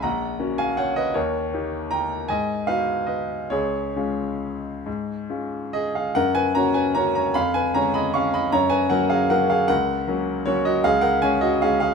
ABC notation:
X:1
M:3/4
L:1/8
Q:1/4=153
K:F#
V:1 name="Grand piano"
[fa]3 [eg] [cf] [Bd] | [Ac]4 [=ga]2 | [dg]2 [Be]2 [Bd]2 | [Gc]6- |
[Gc]4 [Gd] [Ge] | [Af] [Bg] [ca] [Bg] [ca] [ca] | [eb] [Bg] [ca] [db] [ec'] [db] | [ca] [Bg] [Af] [Ge] [Af] [Ge] |
[Af]4 [Fc] [Fd] | [Ge] [Af] [cg] [Fd] [Ge] [Ge] |]
V:2 name="Grand piano"
A,,,2 [A,CF]4 | D,,2 [A,D=G]4 | G,,2 [B,DF]4 | C,,2 [G,CE]4 |
G,,2 [G,CE]4 | F,,2 [A,CF]2 [A,CF]2 | E,,2 [G,C]2 [G,C]2 | F,,2 [F,A,C]2 [F,A,C]2 |
C,,2 [F,A,C]2 [F,A,C]2 | C,,2 [G,C]2 [G,C]2 |]